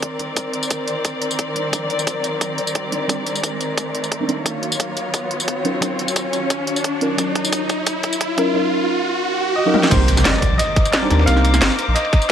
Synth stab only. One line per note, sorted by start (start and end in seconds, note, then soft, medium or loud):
0.00 0.17 G3 medium
0.00 0.17 C4 medium
0.00 0.18 D4 medium
0.00 0.18 D#4 medium
0.19 0.33 G3 medium
0.19 0.33 C4 medium
0.19 0.33 D4 medium
0.19 0.33 D#4 medium
0.19 0.33 A#4 loud
0.35 1.53 G3 medium
0.35 1.54 C4 medium
0.35 1.54 D4 medium
0.35 1.54 D#4 medium
0.35 1.55 A#4 medium
1.55 1.69 G3 medium
1.55 1.69 C4 medium
1.55 1.69 D4 medium
1.55 1.70 D#4 medium
1.55 1.70 A#4 loud
1.71 2.90 G3 medium
1.71 2.90 C4 medium
1.71 2.90 D4 medium
1.71 2.91 D#4 medium
1.71 2.91 A#4 medium
2.91 3.05 G3 medium
2.91 3.06 C4 medium
2.91 3.06 D4 medium
2.91 3.06 D#4 medium
2.91 3.06 A#4 loud
3.08 4.18 G3 medium
3.08 4.18 C4 medium
3.08 4.19 D4 medium
3.08 4.19 D#4 medium
3.08 4.20 A#4 medium
4.20 4.26 G3 medium
4.20 4.27 C4 medium
4.20 4.27 D4 medium
4.20 4.27 D#4 medium
4.20 4.27 A#4 loud
4.28 4.43 G3 loud
4.28 4.44 C4 medium
4.28 4.44 D4 medium
4.28 4.44 D#4 medium
4.28 4.44 A#4 loud
4.44 5.62 F#3 medium
4.44 5.63 C#4 medium
4.44 5.63 D#4 medium
4.44 5.63 F4 medium
4.44 5.64 A#4 medium
5.64 5.78 F#3 medium
5.64 5.78 C#4 medium
5.64 5.79 D#4 medium
5.64 5.79 F4 medium
5.64 5.79 A#4 loud
5.80 6.99 F#3 medium
5.80 6.99 C#4 medium
5.80 6.99 D#4 medium
5.80 7.00 F4 medium
5.80 7.00 A#4 medium
7.01 7.15 F#3 medium
7.01 7.15 C#4 medium
7.01 7.15 D#4 medium
7.01 7.15 F4 medium
7.01 7.15 A#4 loud
7.17 8.35 F#3 medium
7.17 8.35 C#4 medium
7.17 8.36 D#4 medium
7.17 8.36 F4 medium
7.17 8.37 A#4 medium
8.37 8.51 F#3 medium
8.37 8.51 C#4 medium
8.37 8.51 D#4 medium
8.37 8.51 F4 medium
8.37 8.52 A#4 loud
8.53 9.64 F#3 medium
8.53 9.64 C#4 medium
8.53 9.64 D#4 medium
8.53 9.65 F4 medium
8.53 9.65 A#4 medium
9.65 9.72 F#3 loud
9.65 9.72 C#4 medium
9.65 9.72 D#4 medium
9.65 9.72 F4 medium
9.65 9.73 A#4 loud
9.73 9.89 F#3 loud
9.73 9.89 C#4 medium
9.73 9.89 D#4 medium
9.73 9.89 F4 medium
9.73 9.90 A#4 loud
9.89 11.00 G3 medium
9.89 11.01 A#3 medium
9.89 11.00 C4 medium
9.89 11.01 D#4 medium
9.89 11.01 A#4 medium
11.02 11.08 G3 medium
11.02 11.08 C4 medium
11.02 11.08 D4 medium
11.02 11.09 D#4 medium
11.02 11.09 A#4 loud
11.10 11.25 G3 loud
11.10 11.25 C4 medium
11.10 11.26 D4 medium
11.10 11.26 D#4 medium
11.10 11.26 A#4 loud
11.26 12.32 G3 medium
11.26 12.32 A#3 medium
11.26 12.32 C4 medium
11.26 12.32 D#4 medium
11.26 12.32 A#4 medium